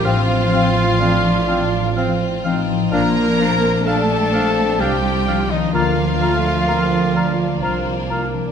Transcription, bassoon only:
X:1
M:3/4
L:1/8
Q:1/4=64
K:Bb
V:1 name="Bassoon"
C2 D2 C E | D C D C2 z | B, A, B, D C B, |]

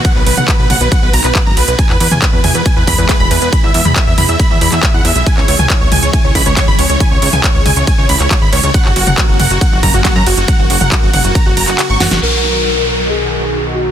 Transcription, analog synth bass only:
X:1
M:4/4
L:1/16
Q:1/4=138
K:B
V:1 name="Analog synth bass" clef=bass
z B,,, B,,, B,,, z B,,, B,,, B,,, z B,,, B,,, B,,, z F,,, B,,, B,,, | z E,, E,, E,, z E,, E,, E,, z E,, E,, E,, z E,,, E,, E,, | z E,, E,, E,, z E,, E,, E,, z E,, E,, E,, z E,, E,, B,,, | z C,, C,, C,, z C,, C,, C,, z C,, C,, C,, z G,,, C,, C,, |
z C,, C,, C,, z C,, C,, C,, z C,, C,, C,, z G,,, C,, C,, | z F,,, F,,, F,,, z F,,, F,,, F,,, z F,,, F,,, F,,, z F,, F,,, F,,, | z F,,, F,,, F,,, z F,,, F,,, F,,, z F,,, F,,, F,,, z G,,, F,,, F,,, | B,,,16 |]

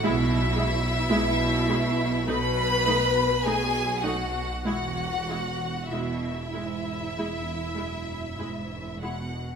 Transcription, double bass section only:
X:1
M:4/4
L:1/8
Q:1/4=49
K:E
V:1 name="Double bass section" clef=bass
B,,,2 B,,,2 B,,,2 B,,,2 | E,,,2 E,,,2 E,,,2 E,,,2 |]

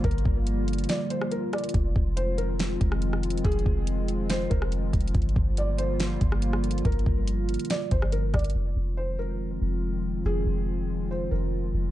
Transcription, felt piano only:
X:1
M:4/4
L:1/8
Q:1/4=141
K:Fdor
V:1 name="Felt piano"
B4 d c B d | z2 c B4- B | A4 c B3 | z2 d c4- c |
B4 d c B d | z2 c B4- B | A4 c B3 |]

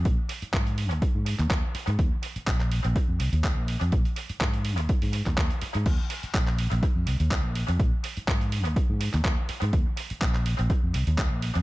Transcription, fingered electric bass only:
X:1
M:4/4
L:1/16
Q:"Swing 16ths" 1/4=124
K:Ablyd
V:1 name="Fingered electric bass" clef=bass
B,,, z3 A,,3 E,, z A,,2 E,, z3 A,, | E,, z3 B,,,3 B,,, z F,, C,, E,,2 B,,,2 F,, | B,,, z3 A,,3 E,, z A,,2 E,, E,, z2 A,, | E,, z3 B,,,3 B,,, z F,, C,, E,,2 B,,,2 F,, |
B,,, z3 A,,3 E,, z A,,2 E,, E,, z2 A,, | E,, z3 B,,,3 B,,, z F,, C,, E,,2 B,,,2 F,, |]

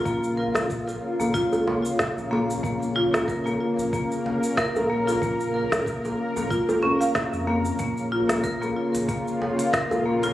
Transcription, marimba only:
X:1
M:4/4
L:1/16
Q:"Swing 16ths" 1/4=93
K:Bbm
V:1 name="Marimba"
B,2 B4 z B, F z4 z B, z | B,2 F B, B B, F2 B,4 B2 B, F | B,2 B4 z B, F z D f z2 B, z | B,2 F B, B B, F2 B,4 B2 B, F |]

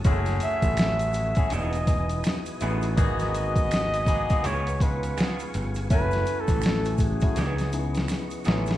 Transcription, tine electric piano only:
X:1
M:4/4
L:1/16
Q:"Swing 16ths" 1/4=82
K:F#dor
V:1 name="Tine electric piano"
[G,A,CEFG]6- [G,A,CEFG] [A,CEFG] z2 [B,DEFG]4 [B,DEFB]2 | [^A,B,DFG]6 [A,B,DFG] [A,B,DFG] z2 [B,CD^EG]6 | [A,CEFg]6- [A,CEFg] [A,CEFG] z2 [B,CDEG]4 [B,CDEG]2 |]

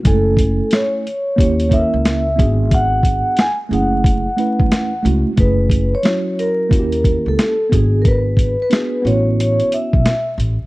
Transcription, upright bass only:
X:1
M:4/4
L:1/16
Q:"Swing 16ths" 1/4=90
K:F#m
V:1 name="Upright bass" clef=bass
F,,,4 z4 ^D,,3 C,,3 G,,,2- | G,,,4 z2 F,,,4 z E,, z2 C,, z | F,,,4 z4 ^D,,3 C,, z2 G,,,2- | G,,,4 z2 A,,,4 z B,,, z2 A,,, z |]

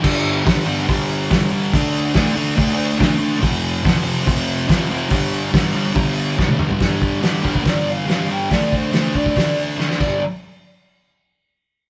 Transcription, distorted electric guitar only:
X:1
M:4/4
L:1/8
Q:1/4=142
K:Ddor
V:1 name="Distorted electric guitar" clef=bass
[G,,D,G,]2 [G,,D,G,] [G,,D,G,] [G,,D,G,]2 [G,,D,G,] [G,,D,G,] | [D,A,D]2 [D,A,D] [D,A,D] [D,A,D]2 [D,A,D] [D,A,D] | [F,,C,F,]2 [F,,C,F,] [F,,C,F,] [F,,C,F,]2 [F,,C,F,] [F,,C,F,] | [G,,D,G,]2 [G,,D,G,] [G,,D,G,] [G,,D,G,]2 [G,,D,G,] [G,,D,G,] |
[G,,D,G,]2 [G,,D,G,] [G,,D,G,] [G,,D,G,]2 [G,,D,G,] [G,,D,G,] | [D,A,D]2 [D,A,D] [D,A,D] [D,A,D]2 [D,A,D] [G,,D,G,] | z8 |]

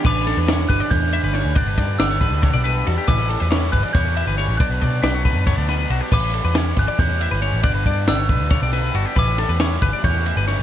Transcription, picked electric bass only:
X:1
M:7/8
L:1/16
Q:1/4=138
K:Amix
V:1 name="Picked electric bass" clef=bass
A,,,3 E,,3 G,,, z E,,3 G,,,2 D,, | G,,,2 G,,2 G,,,3 D,,2 B,,,3 E,, z | A,,,3 E,,3 G,,, z E,,3 G,,,2 A,,, | B,,,2 B,,2 B,,,3 F,,2 D,,3 B,,, z |
A,,,3 E,,3 G,,, z E,,3 G,,,2 A,,, | G,,,2 G,,2 G,,,3 D,,2 B,,,3 G,,, z | A,,,3 E,,3 G,,, z E,,3 G,,,2 A,,, |]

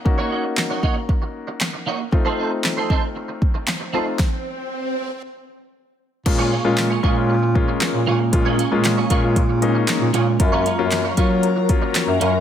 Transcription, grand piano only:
X:1
M:4/4
L:1/16
Q:1/4=116
K:Bbm
V:1 name="Grand piano"
[B,DEG]16 | [=A,CEF]12- [A,CEF]2 [A,CEF]2 | z16 | [A,B,DF]2 z [A,B,DF]2 z [A,B,DF]2 z2 [A,B,DF]3 z3 |
[A,B,DF]2 z [A,B,DF]2 z [A,B,DF]2 z2 [A,B,DE]3 z3 | [G,B,DF]2 z [G,B,DF]2 z [G,B,DF]2 z2 [G,B,DF]3 z3 |]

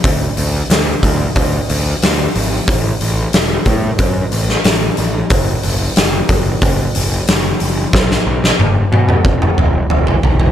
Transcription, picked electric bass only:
X:1
M:4/4
L:1/8
Q:1/4=91
K:Bdor
V:1 name="Picked electric bass" clef=bass
D,, D,, D,, D,, D,, D,, D,, G,,, | A,,, A,,, E,,, A,, F,, A,,, A,,, A,,, | F,,, F,,, F,,, F,,, F,,, F,,, F,,, F,,, | B,,, B,,, F,,, B,, E,,, E,,, E,,, E,,, |]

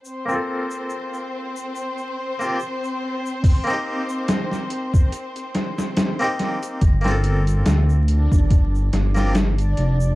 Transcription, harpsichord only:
X:1
M:4/4
L:1/16
Q:"Swing 16ths" 1/4=71
K:Gm
V:1 name="Harpsichord"
z [B,CFA]8- [B,CFA]2 [B,CFG] z4 | z [B,CEG]12 [B,CEG]3 | z [B,CFA]8- [B,CFA]2 [B,CFG] z4 |]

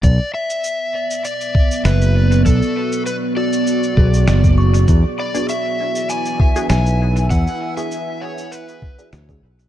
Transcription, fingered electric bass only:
X:1
M:4/4
L:1/8
Q:"Swing 16ths" 1/4=99
K:Bdor
V:1 name="Fingered electric bass" clef=bass
B,,, z4 z F,,,2 | B,,, z4 B,,, F,,,2 | E,, z4 z B,,,2 | E,, z4 z D,, B,,, |]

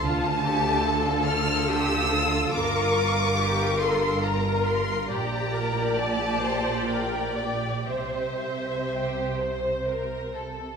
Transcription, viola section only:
X:1
M:3/4
L:1/8
Q:1/4=69
K:Gdor
V:1 name="Viola section"
F G A2 G A | B2 G A B2 | G B d c B d | c4- c z |]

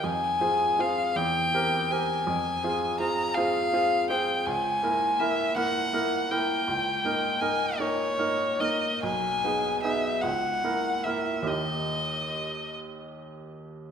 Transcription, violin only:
X:1
M:6/8
L:1/8
Q:3/8=53
K:Fdor
V:1 name="Violin"
a2 f g2 a- | a2 b f2 g | [K:D#phr] g2 e f2 =g- | =g2 ^g c2 d |
g2 e f2 e | d3 z3 |]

